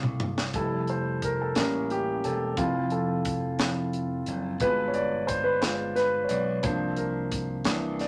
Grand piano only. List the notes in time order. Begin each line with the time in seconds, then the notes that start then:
Already playing: A3 C4 F4 C5
0.54 G3 A3 E4 A4
0.90 C5
1.24 A#4
1.42 A4
1.56 G3 A#3 C#4 A#4
1.91 G4
2.25 A4
2.57 F3 C4 E4 F4
2.92 A4
3.59 F3 C4 E4
4.61 B2 G#3 F4 B4
4.88 C#5
4.94 D5
5.27 C5
5.44 B4
5.62 G#3 F4 B4 C5
5.96 B4
6.24 C#5
6.29 D5
6.63 F3 A#3 D4 C5
6.97 A#4
7.65 E3 A#3 D4
8.01 D5